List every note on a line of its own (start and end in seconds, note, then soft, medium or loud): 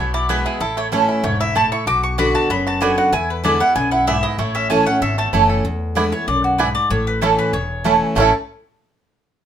0.00 0.44 B1 medium
0.00 0.58 B2 medium
0.00 0.28 B3 medium
0.00 0.14 E4 medium
0.00 0.14 C#5 medium
0.14 0.44 E4 medium
0.14 0.29 D5 medium
0.29 0.59 E3 medium
0.29 0.59 G#3 medium
0.29 0.38 B3 medium
0.29 0.61 B3 medium
0.29 0.60 B3 medium
0.29 0.39 E4 medium
0.29 0.60 E4 medium
0.29 0.45 B4 medium
0.29 0.39 B4 medium
0.29 0.39 G#5 medium
0.46 0.60 E4 medium
0.46 0.61 G#4 medium
0.60 1.08 A1 medium
0.60 1.21 A2 medium
0.60 1.05 E4 medium
0.60 0.77 A4 medium
0.77 1.21 A3 medium
0.77 0.87 C#5 medium
0.92 1.22 E3 medium
0.92 1.02 A3 medium
0.92 1.22 A3 medium
0.92 1.37 C#4 medium
0.92 1.23 C#4 loud
0.92 1.02 E4 medium
0.92 1.23 E4 medium
0.92 1.02 C#5 medium
0.92 1.02 A5 medium
1.09 1.39 E4 medium
1.23 1.71 E1 medium
1.23 1.54 G#2 medium
1.23 1.55 A3 medium
1.23 1.40 C#5 medium
1.40 1.71 E4 medium
1.40 1.55 E5 medium
1.55 1.85 A2 medium
1.55 1.65 A3 medium
1.55 1.87 A3 medium
1.55 1.65 E4 medium
1.55 1.65 C#5 medium
1.55 1.65 A5 loud
1.55 1.72 A5 medium
1.72 1.87 E4 medium
1.72 1.87 C#6 medium
1.86 2.33 B1 medium
1.86 2.47 B2 medium
1.86 2.31 F#4 medium
1.86 2.03 D6 loud
2.03 2.18 C#6 medium
2.18 2.48 D3 medium
2.18 2.28 B3 medium
2.18 2.48 B3 medium
2.18 2.63 D4 medium
2.18 2.49 D4 loud
2.18 2.28 F#4 medium
2.18 2.49 F#4 loud
2.18 2.28 D5 medium
2.18 2.28 F#5 medium
2.18 2.34 B5 medium
2.35 2.65 F#4 medium
2.35 2.50 A5 medium
2.50 2.97 F#1 medium
2.50 3.10 F#2 medium
2.50 2.81 B3 medium
2.50 2.66 B5 medium
2.67 2.97 F#4 medium
2.67 2.81 A5 medium
2.81 3.11 D3 medium
2.81 2.90 B3 medium
2.81 3.11 B3 medium
2.81 3.13 B3 medium
2.81 3.12 D4 medium
2.81 2.91 F#4 medium
2.81 3.12 F#4 loud
2.81 2.91 D5 loud
2.81 2.91 F#5 loud
2.81 2.97 G#5 medium
2.98 3.13 F#4 medium
2.98 3.12 F#5 medium
3.12 3.59 E2 medium
3.12 3.73 E2 medium
3.12 3.60 E4 medium
3.12 3.29 G#5 loud
3.30 3.44 B4 medium
3.44 3.60 D3 medium
3.44 3.60 G#3 medium
3.44 3.53 B3 medium
3.44 3.60 B3 medium
3.44 3.89 D4 medium
3.44 3.54 E4 medium
3.44 3.59 E4 medium
3.44 3.60 D5 medium
3.44 3.54 D5 loud
3.44 3.54 G#5 medium
3.60 3.76 B3 soft
3.60 3.75 E4 medium
3.60 3.92 E4 medium
3.60 3.75 F#5 medium
3.76 4.23 B1 medium
3.76 4.06 F#2 medium
3.76 4.07 B3 medium
3.76 3.91 G#5 medium
3.91 4.23 E4 medium
3.91 4.07 F#5 medium
4.07 4.37 G#2 medium
4.07 4.16 B3 medium
4.07 4.39 B3 medium
4.07 4.17 E4 medium
4.07 4.17 D5 loud
4.07 4.23 E5 medium
4.07 4.17 G#5 loud
4.23 5.33 E4 medium
4.23 4.38 D#5 medium
4.38 4.85 A1 medium
4.38 4.99 A2 medium
4.38 4.69 A3 medium
4.38 4.55 C#5 medium
4.55 4.86 C#4 medium
4.55 4.69 E5 medium
4.70 4.86 E3 medium
4.70 4.79 A3 medium
4.70 5.15 A3 medium
4.70 4.86 A3 medium
4.70 4.86 C#4 loud
4.70 4.80 E4 medium
4.70 4.85 E4 medium
4.70 4.80 C#5 medium
4.70 4.86 G#5 medium
4.70 4.80 A5 medium
4.86 5.30 C#4 medium
4.86 5.02 C#4 soft
4.86 5.01 E4 medium
4.86 5.01 F#5 medium
5.01 5.28 G#1 medium
5.01 5.62 E2 medium
5.01 5.46 A4 medium
5.01 5.18 E5 medium
5.18 5.62 A3 medium
5.18 5.27 A5 medium
5.33 5.60 F#1 medium
5.33 5.63 E3 medium
5.33 5.42 A3 medium
5.33 5.63 A3 medium
5.33 5.64 C#4 medium
5.33 5.65 E4 medium
5.33 5.43 E4 medium
5.33 5.64 E4 medium
5.33 5.43 C#5 loud
5.33 5.43 A5 loud
5.50 5.65 A4 medium
5.64 6.11 E2 medium
5.64 6.25 E2 medium
5.95 6.11 D3 medium
5.95 6.12 G#3 medium
5.95 6.05 B3 medium
5.95 6.12 B3 medium
5.95 6.04 B3 medium
5.95 6.04 D4 medium
5.95 6.05 E4 medium
5.95 6.11 E4 loud
5.95 6.04 E4 medium
5.95 6.06 D5 medium
5.95 6.06 G#5 medium
6.12 6.28 B3 soft
6.12 6.27 E4 medium
6.12 6.27 C#5 medium
6.27 6.74 B1 medium
6.27 6.58 F#2 medium
6.27 6.43 D5 medium
6.44 6.59 F#4 medium
6.58 6.89 G#2 medium
6.58 6.68 B3 medium
6.58 6.67 B3 medium
6.58 6.67 D4 medium
6.58 6.68 E4 medium
6.58 6.67 E4 medium
6.58 6.74 B4 medium
6.58 6.68 D5 loud
6.58 6.69 G#5 loud
6.75 6.90 D5 loud
6.90 7.37 A1 medium
6.90 7.50 A2 loud
6.90 7.06 C#5 medium
7.07 7.21 B4 medium
7.21 7.52 E3 medium
7.21 7.31 A3 medium
7.21 7.29 A3 medium
7.21 7.52 A3 medium
7.21 7.52 C#4 medium
7.21 7.30 C#4 medium
7.21 7.31 E4 medium
7.21 7.30 E4 medium
7.21 7.53 E4 medium
7.21 7.38 A4 medium
7.21 7.31 C#5 medium
7.21 7.31 A5 loud
7.39 7.53 B4 medium
7.53 8.00 E1 medium
7.53 8.13 E2 medium
7.53 8.05 C#5 medium
7.84 8.15 E3 medium
7.84 7.94 A3 medium
7.84 7.92 A3 medium
7.84 8.15 A3 medium
7.84 7.92 C#4 medium
7.84 8.15 C#4 medium
7.84 7.94 E4 medium
7.84 7.93 E4 medium
7.84 8.16 E4 medium
7.84 7.94 C#5 medium
7.84 7.94 A5 loud
8.15 8.31 A1 medium
8.15 8.29 A2 medium
8.15 8.29 E3 medium
8.15 8.29 A3 medium
8.15 8.31 A3 medium
8.15 8.30 A3 medium
8.15 8.30 C#4 medium
8.15 8.32 C#4 medium
8.15 8.29 E4 medium
8.15 8.30 E4 medium
8.15 8.29 C#5 medium
8.15 8.31 C#5 medium
8.15 8.30 A5 medium
8.20 8.33 E4 medium
8.20 8.35 A4 medium